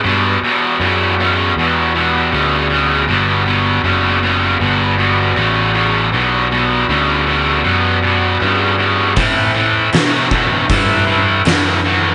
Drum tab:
HH |--------|--------|--------|o-o-o-o-|
SD |--------|--------|--------|--o---o-|
BD |--------|--------|--------|o--oo---|